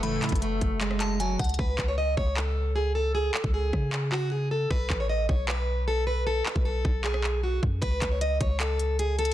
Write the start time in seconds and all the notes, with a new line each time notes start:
Already playing: F#1 F#3 F#4 E5 A5
0.03 A2 C#3 E3 A3 B5, closed hi-hat
0.22 B3, clap, closed hi-hat, open hi-hat
0.29 F#1, kick, closed hi-hat
0.35 closed hi-hat
0.42 A3, closed hi-hat
0.61 F#1, kick, closed hi-hat
0.81 G#3, clap, closed hi-hat
0.91 cross-stick
1.00 A5, clap, closed hi-hat
1.20 F#3 G#5, closed hi-hat
1.39 C#2 F#5, kick, closed hi-hat
1.44 closed hi-hat
1.49 closed hi-hat
1.54 closed hi-hat
1.59 C#2 B4, kick
1.78 C#2, kick, clap
1.88 C#5
1.98 D#5
2.17 C#2 C#5, kick
2.36 A4, clap
2.76 G#4
2.95 A4
3.15 G#4
3.34 clap
3.44 C#2, kick
3.54 G#4
3.73 C#3, kick, cross-stick
3.93 clap
4.12 F#4, clap
4.32 G#4
4.51 A4
4.71 B1 B4, kick
4.90 A1, kick, clap
5.00 C#5
5.09 D#5
5.29 B1 C#5, kick
5.48 B4, clap
5.88 A4
6.07 B4
6.27 A4
6.46 clap
6.56 B1, kick
6.65 A4
6.85 B1, kick
7.04 G#4, clap
7.14 cross-stick
7.24 clap
7.43 F#4
7.63 F#2, kick
7.82 C#2 B4, kick, closed hi-hat
8.02 C#2, kick, clap, closed hi-hat
8.11 C#5
8.21 D#5, closed hi-hat
8.41 C#2 C#5, kick, closed hi-hat
8.60 A4, clap, closed hi-hat
8.79 closed hi-hat
8.99 G#4, closed hi-hat
9.19 A4, closed hi-hat
9.25 closed hi-hat